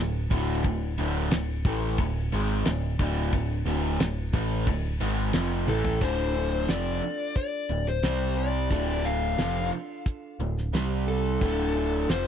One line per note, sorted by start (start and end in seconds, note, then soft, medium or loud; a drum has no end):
0.00 0.29 D1 medium
0.00 0.25 D2 medium
0.00 0.25 A2 medium
0.31 0.63 D1 medium
0.31 0.64 D2 loud
0.31 0.64 A2 medium
0.31 0.64 D3 loud
0.31 kick loud
0.31 ride medium
0.64 0.96 D1 medium
0.64 0.92 D2 medium
0.64 0.92 A2 medium
0.64 kick medium
0.64 ride medium
0.98 1.30 D1 medium
0.98 1.31 D2 medium
0.98 1.32 A2 medium
0.98 1.32 D3 medium
0.98 ride medium
1.31 1.64 D1 medium
1.31 1.59 D2 medium
1.31 1.59 A2 medium
1.31 snare loud
1.31 ride medium
1.65 1.96 A1 medium
1.65 1.99 A2 medium
1.65 1.99 E3 medium
1.65 1.99 A3 loud
1.65 kick loud
1.65 ride medium
1.98 2.30 D1 medium
1.98 2.27 D2 medium
1.98 2.27 A2 medium
1.98 kick medium
1.98 ride medium
2.32 2.64 G#1 loud
2.32 2.66 G#2 medium
2.32 2.66 D#3 medium
2.32 2.66 G#3 medium
2.32 ride medium
2.65 2.97 D1 medium
2.65 2.94 D2 medium
2.65 2.94 A2 medium
2.65 snare loud
2.65 ride medium
2.99 3.31 D1 medium
2.99 3.32 D2 medium
2.99 3.33 A2 medium
2.99 3.33 D3 medium
2.99 kick medium
2.99 ride medium
3.33 3.64 D1 medium
3.33 3.60 D2 medium
3.33 3.61 A2 medium
3.33 kick medium
3.33 ride medium
3.65 3.97 D1 medium
3.65 3.99 D2 medium
3.65 3.99 A2 medium
3.65 4.00 D3 medium
3.65 ride medium
4.00 4.31 D1 medium
4.00 4.27 D2 medium
4.00 4.27 A2 medium
4.00 snare loud
4.00 ride medium
4.33 4.65 A1 medium
4.33 4.67 A2 medium
4.33 4.67 E3 medium
4.33 4.67 A3 medium
4.33 kick loud
4.33 ride medium
4.67 4.98 D1 medium
4.67 4.95 D2 medium
4.67 4.95 A2 medium
4.67 kick medium
4.67 ride medium
5.00 5.32 G#1 loud
5.00 5.33 G#2 medium
5.00 5.34 D#3 medium
5.00 5.34 G#3 medium
5.00 ride medium
5.33 5.66 F1 medium
5.33 5.67 F2 medium
5.33 5.67 C3 medium
5.33 5.68 F3 loud
5.33 snare loud
5.33 ride medium
5.67 6.00 A1 medium
5.67 6.01 A2 medium
5.67 6.01 E3 loud
5.67 6.01 A3 loud
5.67 6.00 A4 medium
5.67 high tom medium
5.85 floor tom medium
6.01 6.65 D1 medium
6.01 6.69 D2 medium
6.01 6.69 A2 medium
6.01 6.35 D3 medium
6.01 6.69 D3 medium
6.01 6.35 A3 medium
6.01 6.35 D4 medium
6.01 6.33 F4 medium
6.01 6.32 A4 medium
6.01 6.69 C5 medium
6.01 kick medium
6.01 closed hi-hat medium
6.34 6.67 D4 soft
6.34 6.68 F4 soft
6.34 6.68 A4 soft
6.34 closed hi-hat medium
6.68 7.00 F1 medium
6.68 7.02 F2 medium
6.68 7.02 C3 medium
6.68 7.02 F3 medium
6.68 7.02 A3 soft
6.68 7.03 D4 soft
6.68 7.02 F4 medium
6.68 7.00 A4 soft
6.68 7.36 D5 medium
6.68 snare loud
6.68 closed hi-hat medium
7.02 8.04 D4 soft
7.02 8.04 F4 soft
7.02 8.03 A4 soft
7.02 closed hi-hat medium
7.35 7.88 D5 medium
7.35 kick medium
7.35 closed hi-hat medium
7.69 8.01 D1 medium
7.69 7.98 D2 soft
7.69 7.98 A2 medium
7.69 closed hi-hat medium
7.87 8.38 C5 medium
7.87 snare soft
8.02 8.68 C2 medium
8.02 8.37 C3 soft
8.02 8.71 C3 medium
8.02 8.37 G3 medium
8.02 8.71 G3 medium
8.02 8.37 C4 soft
8.02 8.71 C4 medium
8.02 8.35 G4 medium
8.02 snare medium
8.02 closed hi-hat medium
8.36 8.71 G3 soft
8.36 8.71 C4 soft
8.36 8.71 G4 medium
8.36 9.08 D5 medium
8.36 closed hi-hat medium
8.70 9.35 D1 medium
8.70 9.38 D2 medium
8.70 9.38 A2 medium
8.70 9.05 D3 medium
8.70 9.38 D3 medium
8.70 9.05 D4 medium
8.70 9.05 F4 medium
8.70 9.04 A4 medium
8.70 kick medium
8.70 closed hi-hat medium
9.05 9.38 D4 soft
9.05 9.38 F4 soft
9.05 9.39 A4 soft
9.05 9.69 F5 medium
9.05 closed hi-hat medium
9.38 9.70 F1 medium
9.38 9.72 F2 medium
9.38 9.72 C3 medium
9.38 9.73 D3 medium
9.38 9.72 F3 medium
9.38 9.73 D4 medium
9.38 9.72 F4 medium
9.38 9.71 A4 medium
9.38 snare medium
9.38 closed hi-hat medium
9.56 snare soft
9.72 10.75 D4 soft
9.72 10.74 F4 soft
9.72 10.74 A4 soft
9.72 closed hi-hat medium
10.06 kick medium
10.06 closed hi-hat medium
10.39 10.71 D1 medium
10.39 10.67 D2 medium
10.39 10.67 A2 medium
10.39 closed hi-hat medium
10.57 snare soft
10.73 11.37 C2 medium
10.73 11.40 C3 medium
10.73 11.08 C3 medium
10.73 11.41 G3 medium
10.73 11.07 G3 medium
10.73 11.41 C4 medium
10.73 11.07 C4 medium
10.73 11.05 G4 medium
10.73 snare medium
10.73 closed hi-hat medium
11.06 11.41 G3 soft
11.06 11.42 C4 soft
11.06 11.41 G4 medium
11.06 12.12 A4 medium
11.06 closed hi-hat medium
11.41 12.05 D1 medium
11.41 12.08 D2 medium
11.41 12.08 A2 medium
11.41 11.75 D3 medium
11.41 12.08 D3 loud
11.41 11.76 D4 medium
11.41 11.74 F4 medium
11.41 11.74 A4 medium
11.41 kick medium
11.41 closed hi-hat medium
11.75 12.08 D4 soft
11.75 12.08 F4 soft
11.75 12.09 A4 soft
11.75 closed hi-hat medium
12.08 12.27 F1 medium
12.08 12.27 F2 medium
12.08 12.27 C3 medium
12.08 12.27 D3 medium
12.08 12.27 F3 loud
12.08 12.27 D4 soft
12.08 12.27 F4 medium
12.08 12.27 A4 medium
12.08 12.27 C5 medium
12.08 snare loud
12.08 closed hi-hat medium